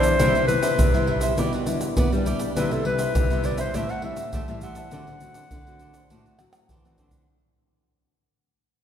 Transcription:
Already playing: nylon-string guitar G2 E3 G3 B3 D4, clarinet C5
0.03 cavaquinho G4 B4 E5, pandeiro, shaker
0.19 nylon-string guitar C3 G3 B3 E4, cavaquinho E4 B4 C5 E5, pandeiro, shaker, surdo
0.35 nylon-string guitar C3, cavaquinho B4 C5 E5, pandeiro, shaker
0.47 nylon-string guitar G3 B3 E4, clarinet B4, muted cavaquinho stroke, pandeiro, shaker
0.62 cavaquinho B4 C5 E5, pandeiro, shaker
0.78 nylon-string guitar G2 C3, pandeiro, shaker, surdo
0.94 nylon-string guitar G3 B3 E4, cavaquinho B4 C5 E5, pandeiro, shaker
1.07 cavaquinho E4 B4 C5 E5, pandeiro
1.21 cavaquinho B4 C5 E5, pandeiro, shaker
1.37 nylon-string guitar B2 G3 D4 E4, cavaquinho E4 G4 B4 D5, pandeiro, shaker, surdo
1.53 cavaquinho G4 B4 D5, pandeiro, shaker
1.66 nylon-string guitar G3 D4 E4, muted cavaquinho stroke, pandeiro, shaker
1.81 pandeiro, shaker
1.97 nylon-string guitar B2 B3, cavaquinho E4 G4 B4 D5, pandeiro, shaker, surdo
2.12 nylon-string guitar G3 D4 E4, cavaquinho G4 B4 D5, pandeiro, shaker
2.26 cavaquinho E4 G4 B4 D5, pandeiro, shaker
2.39 cavaquinho G4 B4 D5, pandeiro, shaker
2.56 nylon-string guitar C3 G3 B3 E4, cavaquinho E4 B4 C5 E5, clarinet B4, pandeiro, shaker, surdo
2.71 nylon-string guitar C3, clarinet A4, cavaquinho B4 C5 E5, pandeiro, shaker
2.85 nylon-string guitar G3 B3 E4, clarinet B4, muted cavaquinho stroke, pandeiro
2.99 cavaquinho B4 C5 E5, pandeiro, shaker
3.15 nylon-string guitar G2 C3, pandeiro, shaker, surdo
3.30 nylon-string guitar G3 B3 E4, cavaquinho B4 C5 E5, pandeiro, shaker
3.44 cavaquinho E4 B4 C5 E5, clarinet D5, pandeiro, shaker
3.58 cavaquinho B4 C5 E5, clarinet C5, pandeiro, shaker
3.74 nylon-string guitar A2 G3 C4 E4, cavaquinho G4 C5 E5 A5, clarinet E5, pandeiro, shaker, surdo
3.89 cavaquinho C5 E5 A5, clarinet F#5, pandeiro, shaker
4.02 nylon-string guitar G3 C4 E4, clarinet E5, muted cavaquinho stroke, pandeiro
4.16 pandeiro, shaker
4.33 nylon-string guitar E3 A3, cavaquinho G4 C5 E5 A5, pandeiro, shaker, surdo
4.48 nylon-string guitar A2 G3 C4 E4, cavaquinho C5 E5 A5, pandeiro, shaker
4.61 cavaquinho G4 C5 E5 A5, clarinet F#5, pandeiro, shaker
4.75 cavaquinho C5 E5 A5, pandeiro, shaker
4.91 nylon-string guitar D3 A3 C4 F#4, cavaquinho D4 C5 D5 F#5, pandeiro, shaker, surdo
5.07 nylon-string guitar D3, cavaquinho C5 D5 F#5, pandeiro, shaker
5.20 nylon-string guitar A3 C4 F#4, muted cavaquinho stroke, pandeiro, shaker
5.34 cavaquinho C5 D5 F#5, pandeiro, shaker
5.51 nylon-string guitar A2 D3, pandeiro, shaker, surdo
5.67 nylon-string guitar A3 C4 F#4, cavaquinho C5 D5 F#5, pandeiro, shaker
5.79 cavaquinho D4 C5 D5 F#5, pandeiro, shaker
5.93 cavaquinho C5 D5 F#5, pandeiro, shaker
6.10 nylon-string guitar A2 D3 A3 C4 F#4, cavaquinho D4 C5 D5 F#5, pandeiro, shaker, surdo
6.26 cavaquinho C5 D5 F#5, pandeiro, shaker
6.39 nylon-string guitar F#3 A3 C4 F#4, muted cavaquinho stroke, pandeiro, tamborim, shaker
6.53 pandeiro, tamborim, shaker
6.69 nylon-string guitar E3, cavaquinho D4 C5 D5 F#5, pandeiro, shaker, surdo
6.85 nylon-string guitar A3 C4 F#4, cavaquinho C5 D5 F#5, pandeiro, shaker
6.98 nylon-string guitar D3, cavaquinho D4 C5 D5 F#5, pandeiro, shaker, surdo
7.11 cavaquinho C5 D5 F#5, pandeiro, shaker, surdo

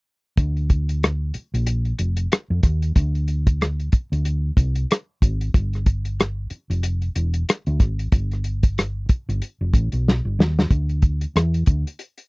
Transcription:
0.37 fingered electric bass D2, kick, closed hi-hat
0.57 closed hi-hat
0.70 kick, closed hi-hat
0.89 closed hi-hat
1.03 cross-stick, closed hi-hat
1.34 muted fingered electric bass stroke, closed hi-hat
1.54 fingered electric bass A#1, closed hi-hat
1.66 closed hi-hat
1.85 closed hi-hat
1.99 fingered electric bass F1, closed hi-hat
2.16 closed hi-hat
2.32 cross-stick, closed hi-hat
2.50 fingered electric bass F2
2.63 fingered electric bass D#2, kick, cross-stick, closed hi-hat
2.82 closed hi-hat
2.96 fingered electric bass D2, kick, closed hi-hat
3.15 closed hi-hat
3.28 closed hi-hat
3.47 kick, closed hi-hat
3.61 cross-stick, closed hi-hat
3.80 closed hi-hat
3.92 muted fingered electric bass stroke, kick, closed hi-hat
4.12 fingered electric bass D2, closed hi-hat
4.25 closed hi-hat
4.57 fingered electric bass C2, kick, closed hi-hat
4.75 closed hi-hat
4.91 cross-stick, closed hi-hat
5.22 fingered electric bass G#1, kick, closed hi-hat
5.41 closed hi-hat
5.54 fingered electric bass G1, kick, closed hi-hat
5.73 cross-stick, closed hi-hat
5.86 kick, closed hi-hat
6.05 closed hi-hat
6.20 cross-stick, closed hi-hat
6.50 muted fingered electric bass stroke, closed hi-hat
6.70 fingered electric bass F1, closed hi-hat
6.83 closed hi-hat
7.02 closed hi-hat
7.16 fingered electric bass E1, closed hi-hat
7.34 closed hi-hat
7.49 cross-stick, closed hi-hat
7.66 fingered electric bass D2, closed hi-hat
7.80 fingered electric bass G#1, kick, cross-stick, closed hi-hat
7.99 closed hi-hat
8.12 fingered electric bass G1, kick, closed hi-hat
8.31 cross-stick, closed hi-hat
8.44 closed hi-hat
8.63 kick, closed hi-hat
8.78 cross-stick, closed hi-hat
9.09 muted fingered electric bass stroke, kick, closed hi-hat
9.29 fingered electric bass G1, closed hi-hat
9.42 closed hi-hat
9.61 fingered electric bass F1
9.74 fingered electric bass A1, kick, closed hi-hat
9.92 fingered electric bass B1, closed hi-hat
10.08 snare
10.25 fingered electric bass G1
10.39 fingered electric bass D#2, snare
10.59 snare
10.71 fingered electric bass D2, kick, closed hi-hat
10.89 closed hi-hat
11.02 kick, closed hi-hat
11.21 closed hi-hat
11.36 fingered electric bass E2, cross-stick, closed hi-hat
11.54 closed hi-hat
11.66 fingered electric bass D2, kick, closed hi-hat
11.87 closed hi-hat
11.99 closed hi-hat
12.18 closed hi-hat

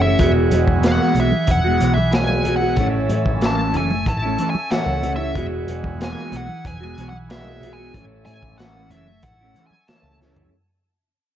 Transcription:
Already playing: picked electric bass F#1, clean electric guitar A2 E3
0.02 clean electric guitar E4, lead electric guitar E5
0.06 clean electric guitar A3 C#4
0.19 picked electric bass E1, clean electric guitar E3 G#3 B3, transistor combo organ E4 G#4 F#5, kick, closed hi-hat
0.23 clean electric guitar F#4
0.51 picked electric bass E1, clean electric guitar E3 G#3 B3 F#4, closed hi-hat, high conga
0.67 picked electric bass E1, kick, high conga
0.82 clean electric guitar E3 G#3 B3 F#4, snare, closed hi-hat
0.88 lead electric guitar F#5
1.01 snare
1.15 picked electric bass B1, clean electric guitar E3 G#3 B3, closed hi-hat, low conga
1.19 clean electric guitar F#4, lead electric guitar E5
1.32 muted clean electric guitar stroke, high conga
1.47 picked electric bass E1, lead electric guitar F#5, kick, closed hi-hat
1.64 clean electric guitar G#3 B3 F#4
1.79 picked electric bass B1, clean electric guitar E3 G#3 B3 F#4, closed hi-hat
1.94 lead electric guitar E5, muted clean electric guitar stroke, high conga
2.12 clean electric guitar E3 G#3 B3 F#4, lead electric guitar G#5, snare, closed hi-hat
2.29 high conga
2.45 clean electric guitar E3 G#3 B3 F#4, closed hi-hat, low conga
2.56 lead electric guitar F#5
2.61 clean electric guitar G#3 B3 F#4
2.75 picked electric bass A1, clean electric guitar A2 E3 A3, transistor combo organ C#4 A4 E5, kick, closed hi-hat
2.80 clean electric guitar C#4 E4
3.09 picked electric bass A2, clean electric guitar E3 A3 C#4, closed hi-hat, high conga
3.13 clean electric guitar E4
3.25 picked electric bass A1, kick, high conga
3.41 clean electric guitar A2 E3 A3 C#4 E4, snare, closed hi-hat
3.46 lead electric guitar A5
3.74 picked electric bass F#1, clean electric guitar E3 A3 C#4 E4, lead electric guitar G#5, closed hi-hat, low conga
3.91 muted clean electric guitar stroke, high conga
4.06 picked electric bass A1, lead electric guitar A5, kick, closed hi-hat
4.22 clean electric guitar A3 C#4 E4
4.38 clean electric guitar E3 A3 C#4 E4, closed hi-hat
4.50 lead electric guitar G#5
4.55 muted clean electric guitar stroke, high conga
4.70 clean electric guitar A2 E3 A3 C#4 E4, lead electric guitar F#5, snare, closed hi-hat
4.86 picked electric bass C#2, high conga
5.02 clean electric guitar E3 A3 C#4 E4, closed hi-hat, low conga
5.16 clean electric guitar C#4 E4, lead electric guitar E5
5.21 clean electric guitar A3
5.34 picked electric bass E1, clean electric guitar E3 G#3 B3 F#4, transistor combo organ E4 G#4 F#5, kick, closed hi-hat
5.66 picked electric bass E1, clean electric guitar E3 G#3 B3 F#4, closed hi-hat, high conga
5.84 picked electric bass E1, kick, high conga
6.00 clean electric guitar E3 G#3 B3 F#4, snare, closed hi-hat
6.04 lead electric guitar G#5
6.18 snare
6.31 picked electric bass B1, clean electric guitar E3 G#3 B3, closed hi-hat, low conga
6.35 clean electric guitar F#4, lead electric guitar F#5
6.48 muted clean electric guitar stroke, high conga
6.65 picked electric bass E1, lead electric guitar G#5, kick, closed hi-hat
6.80 clean electric guitar G#3 B3 F#4
6.97 picked electric bass B1, clean electric guitar E3 G#3 B3 F#4, closed hi-hat
7.09 lead electric guitar F#5, high conga
7.14 muted clean electric guitar stroke
7.29 clean electric guitar E3 G#3 B3 F#4, lead electric guitar E5, snare, closed hi-hat
7.44 high conga
7.61 clean electric guitar E3 G#3 B3 F#4, closed hi-hat, low conga
7.73 lead electric guitar G#5
7.78 clean electric guitar G#3 B3 F#4
7.94 picked electric bass A1, clean electric guitar A2 E3 A3 C#4 E4, transistor combo organ C#4 A4 E5, kick, closed hi-hat
8.26 picked electric bass A2, clean electric guitar E3 A3 C#4, lead electric guitar G#5, closed hi-hat, high conga
8.30 clean electric guitar E4
8.43 picked electric bass A1, kick
8.58 clean electric guitar A2 E3 A3 C#4 E4, lead electric guitar F#5, snare, closed hi-hat
8.90 picked electric bass F#1, clean electric guitar E3 A3 C#4, lead electric guitar E5, closed hi-hat, low conga
8.94 clean electric guitar E4
9.06 muted clean electric guitar stroke, high conga
9.23 picked electric bass A1, lead electric guitar F#5, kick, closed hi-hat
9.41 clean electric guitar A3 C#4 E4
9.54 clean electric guitar E3 A3, closed hi-hat, low conga
9.59 clean electric guitar C#4 E4
9.67 lead electric guitar G#5
9.71 muted clean electric guitar stroke, high conga
9.88 clean electric guitar A2 E3 A3 C#4, lead electric guitar A5, snare, closed hi-hat
9.92 clean electric guitar E4
10.03 picked electric bass C#2
10.20 clean electric guitar E3 A3 C#4, snare, low conga
10.24 clean electric guitar E4
10.36 clean electric guitar C#4 E4, floor tom
10.42 clean electric guitar A3

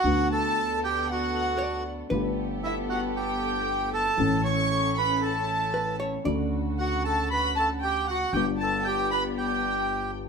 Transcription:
Already playing: bandoneon F#4 F#5, violin section F#5
0.04 upright bass D2, upright piano D2 D3 A3 B3 F#4, string section B3 D4 A4
0.32 bandoneon A4 A5, violin section A5
0.84 bandoneon G4 G5, violin section G5
1.11 bandoneon F#4 F#5, violin section F#5
1.58 hollow-body jazz guitar D5
2.09 upright bass G1, upright piano G1 G2 D3 A3 B3 G4, string section B3 G4 A4, hollow-body jazz guitar B4
2.63 bandoneon E4 E5, violin section E5
2.89 bandoneon F#4 F#5, violin section F#5
3.16 bandoneon G4 G5, violin section G5
3.93 bandoneon A4 A5, violin section A5
4.17 upright bass A1, upright piano A1 A2 E3 A3 C#4 A4, string section C#4 E4 A4
4.44 bandoneon C#5 C#6, violin section C#6
4.98 bandoneon B4 B5, violin section B5
5.22 bandoneon A4 A5, violin section A5
5.74 hollow-body jazz guitar B4
6.00 hollow-body jazz guitar C#5
6.24 upright bass D2, upright piano D2 C#3 D3 A3 F#4, string section C#3 F#4, hollow-body jazz guitar D5
6.79 bandoneon F#4 F#5, violin section F#5
7.05 bandoneon A4 A5, violin section A5
7.31 bandoneon B4 B5, violin section B5
7.56 bandoneon A4 A5, violin section A5
7.81 bandoneon G4 G5, violin section G5
8.08 bandoneon F#4 F#5, violin section F#5
8.33 upright bass G1, upright piano G1 G2 D3 G3 B3, string section B3 D4 G4, bandoneon G4 G5, violin section G5
8.37 upright piano G4
8.59 violin section A5, bandoneon A5
8.63 bandoneon A4
8.85 bandoneon G4 G5, violin section G5
9.11 bandoneon B4 B5, violin section B5
9.37 bandoneon G4 G5, violin section G5

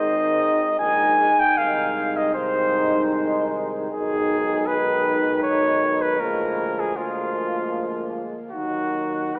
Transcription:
Already playing: tuba G#1, euphonium D#3, trombone section G#3, french horn section D#4, cornet D#5
0.79 tuba A#1, euphonium D#3, trombone section G#3, french horn section D#4, cornet G#5
1.39 cornet G5
1.56 tuba C2, euphonium D#3, trombone section G#3, french horn section D#4, cornet F5
2.17 cornet D#5
2.35 euphonium D#3, trombone section G#3, french horn section D#4, cornet C5
3.91 tuba B1, euphonium D#3, trombone section G#3, french horn section D#4, cornet G#4
4.67 euphonium D#3, trombone section G#3, french horn section D#4, cornet B4
5.43 tuba B1, cornet C#5
6.02 cornet B4
6.19 tuba D2, euphonium F3, trombone section G#3, french horn section A#3, cornet A#4
6.80 cornet G#4
6.97 euphonium F3, trombone section G#3, french horn section A#3, cornet F4
8.51 tuba D#2, euphonium D#3, trombone section F#3, french horn section D#4, cornet F#4
9.35 tuba G#1, trombone section G#3, french horn section D#4

